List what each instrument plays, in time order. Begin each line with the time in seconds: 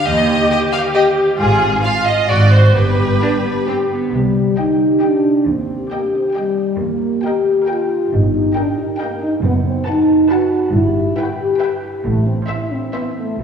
Already playing: harp G3 G4
0.05 cello section D#2, double bass section D#2, harp D#3, viola section G4, violin section D#5
0.29 harp G3
0.50 violin section G4 D#5, harp C5
0.72 violin section F5
0.95 violin section G4 D#5, harp C5
1.17 harp C4
1.39 double bass section G#1, cello section G#2, harp G#2, viola section F4, violin section G#4
1.62 harp G#3
1.83 viola section F4, violin section F4 F5
2.06 harp F4, violin section D#5
2.29 double bass section G#1, harp G#2, cello section G#2, violin section F#4 D5, viola section F#4
2.51 harp C4 C5, violin section C5
2.74 double bass section G1, harp G2, cello section G2, viola section G4, violin section B4
2.98 harp D3
3.21 harp D4, cello section D4, violin section G4
3.44 cello section B3, harp G4
3.67 cello section C4, harp D4, violin section G4
3.90 harp G3, cello section B3
4.12 double bass section C2, cello section C3, harp C3, french horn section G3
4.35 harp C4
4.58 harp D#4, french horn section D#4, viola section G4, violin section D#5 G5
4.80 harp G4
5.01 french horn section D4, harp D#4, viola section G4, violin section D#5 G5
5.24 harp G3
5.46 double bass section D#2, cello section D#2, harp D#3, french horn section C4
5.68 harp G3
5.90 french horn section A#3, harp G4, viola section G4, violin section D#5 G5
6.13 french horn section C4, harp D#5
6.34 french horn section G3, harp G4, viola section G4, violin section D#5 G5
6.57 harp D#4
6.80 double bass section D#2, cello section D#2, harp D#3, french horn section A#3
7.01 harp A#3
7.22 harp G4, french horn section G4, viola section A#4, violin section D#5 G5
7.45 harp D#5
7.66 french horn section F4, harp G4, viola section A#4, violin section D#5 G5
7.89 harp D#4
8.12 double bass section G1, cello section G2, harp G2, french horn section D#4
8.33 harp G3
8.55 french horn section D4, harp D#4, viola section A#4, violin section D#5 G5
8.77 french horn section D#4, harp A#4
8.98 french horn section A#3, harp D#4, viola section A#4, violin section D#5 G5
9.21 harp A#3, french horn section D#4
9.42 double bass section F#1, harp F#2, cello section F#2, french horn section B3
9.64 harp F#3, french horn section C4
9.86 french horn section D#4, harp F#4, viola section B4, violin section F#5 A5
10.08 harp B4
10.29 harp F#4, french horn section F#4, viola section B4, violin section F#5 A5
10.52 harp B3
10.73 double bass section G1, harp G2, cello section G2, french horn section E4
10.96 harp G3
11.17 harp E4, french horn section F#4, viola section B4, violin section E5 G5
11.40 french horn section G4, harp B4
11.60 harp E4, viola section B4, violin section E5 G5
11.83 harp B3
12.04 double bass section A1, harp A2, cello section A2, french horn section A3
12.27 harp E3, french horn section C4
12.47 french horn section E4, harp E4, viola section C5, violin section E5
12.72 french horn section C4, harp C5
12.93 french horn section B3, harp E4, viola section C5, violin section E5
13.16 french horn section A3, harp C4
13.38 double bass section B1, harp B2, cello section B2, french horn section F#3